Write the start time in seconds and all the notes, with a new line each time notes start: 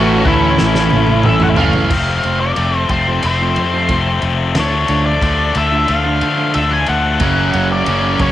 Already playing: A1 A2 E3 A3 C#4 E4 F#4 C#5 F#5 A5 C#6
0.25 D2 A2 E3 A3 C#4 E4 E5, kick
0.58 A1, snare
0.75 snare
0.90 A1, high tom
1.07 high tom
1.23 A1 E5, mid tom
1.40 F#5, mid tom
1.56 F#1 A2 E3 A3 F5, floor tom
1.73 floor tom
1.90 F1 F2 C3 F3 A3 C4, kick, crash
2.08 muted clean electric guitar stroke
2.23 F1 F3 A3 C4 F4, ride
2.40 D5
2.56 F1 F2 C3 F3 A3 C4, muted clean electric guitar stroke, ride
2.89 F1 F2 C3 F3 A3 C4 C5, kick, ride
3.07 F3 A3 C4 F4
3.22 F1 F2 C3 F3 A3 C4 C5, muted clean electric guitar stroke, ride
3.41 F3 A3 C4 F4
3.56 F2, ride
3.73 F3 A3 C4 F4
3.89 F1 F2 C3 F3 A3 C4, kick, ride
4.07 muted clean electric guitar stroke
4.22 F1 F2 C3 F3 A3 C4, ride
4.55 D2 D3 F3 A3 D4, snare, ride
4.60 C#5
4.74 muted clean electric guitar stroke
4.88 D2 D3 A3 D4 F4, ride
5.06 D5
5.21 D2 D3 F3 A3 D4, muted clean electric guitar stroke, kick, ride
5.55 D2 D3 F3 A3 D4 E5, ride
5.72 D3 A3 D4 F4
5.87 D2 D3 F3 A3 D4 F5, ride
6.05 D3 A3 D4 F4
6.21 D3, ride
6.38 D3 A3 D4 F4
6.54 D2 D3 F3 A3 D4 E5, ride
6.71 G#5, muted clean electric guitar stroke
6.86 D2 D3 F3 A3 D4 F#5, ride
7.20 F#1 F#2 C#3 F#3 A#3 C#4, kick, ride
7.38 muted clean electric guitar stroke
7.53 F#1 F#3 A#3 C#4 F#4, ride
7.72 D5
7.86 F#1 F#2 C#3 F#3 A#3 C#4, muted clean electric guitar stroke, ride
8.19 F#1 F#2 C#3 F#3 A#3 C#4 C#5, kick, ride